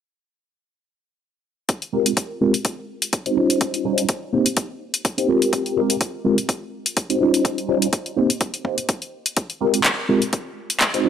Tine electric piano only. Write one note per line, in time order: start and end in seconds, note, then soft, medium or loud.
1.93 2.10 G#3 medium
1.93 2.10 C4 medium
1.93 2.10 F4 medium
1.93 2.11 G4 medium
1.93 2.11 A#4 medium
2.41 2.52 G#3 medium
2.41 2.52 C4 medium
2.41 2.53 F4 medium
2.41 2.53 G4 medium
2.41 2.53 A#4 medium
3.26 3.34 G#3 medium
3.26 3.34 C4 medium
3.26 3.34 D#4 medium
3.26 3.34 F#4 medium
3.26 3.34 C5 medium
3.37 3.82 G3 medium
3.37 3.82 C#4 medium
3.37 3.82 D#4 medium
3.37 3.82 F4 medium
3.37 3.82 C5 medium
3.85 4.02 G3 medium
3.85 4.02 C#4 medium
3.85 4.03 D#4 medium
3.85 4.03 F4 medium
3.85 4.03 C5 medium
4.33 4.44 A#3 medium
4.33 4.44 C4 medium
4.33 4.44 D#4 medium
4.33 4.45 G4 medium
4.33 4.45 C5 medium
5.18 5.26 A#3 medium
5.18 5.26 C4 medium
5.18 5.26 D#4 medium
5.18 5.26 G4 medium
5.18 5.26 C5 medium
5.28 5.74 G#3 medium
5.28 5.74 C4 medium
5.28 5.74 F4 medium
5.28 5.74 G4 medium
5.28 5.74 A#4 medium
5.76 5.94 G#3 medium
5.76 5.94 C4 medium
5.76 5.94 F4 medium
5.76 5.94 G4 medium
5.76 5.95 A#4 medium
6.24 6.36 G#3 medium
6.24 6.36 C4 medium
6.24 6.36 F4 medium
6.24 6.37 G4 medium
6.24 6.37 A#4 medium
7.09 7.18 G#3 medium
7.09 7.18 C4 medium
7.09 7.18 D#4 medium
7.09 7.18 F#4 medium
7.09 7.18 C5 medium
7.20 7.66 G3 medium
7.20 7.66 C#4 medium
7.20 7.66 D#4 medium
7.20 7.66 F4 medium
7.20 7.66 C5 medium
7.68 7.86 G3 medium
7.68 7.86 C#4 medium
7.68 7.86 D#4 medium
7.68 7.86 F4 medium
7.68 7.87 C5 medium
8.16 8.28 A#3 medium
8.16 8.28 C4 medium
8.16 8.28 D#4 medium
8.16 8.29 G4 medium
8.16 8.29 C5 medium
8.64 8.76 A#3 medium
8.64 8.76 C4 medium
8.64 8.76 D#4 medium
8.64 8.77 G4 medium
8.64 8.77 C5 medium
9.61 9.78 G#3 medium
9.61 9.78 C4 medium
9.61 9.78 F4 medium
9.61 9.79 G4 medium
9.61 9.79 A#4 medium
10.09 10.20 G#3 medium
10.09 10.20 C4 medium
10.09 10.21 F4 medium
10.09 10.21 G4 medium
10.09 10.21 A#4 medium
10.94 11.02 G#3 medium
10.94 11.02 C4 medium
10.94 11.02 D#4 medium
10.94 11.02 F#4 medium
10.94 11.03 C5 medium
11.04 11.09 G3 medium
11.04 11.09 C#4 medium
11.04 11.09 D#4 medium
11.04 11.09 F4 medium
11.04 11.09 C5 medium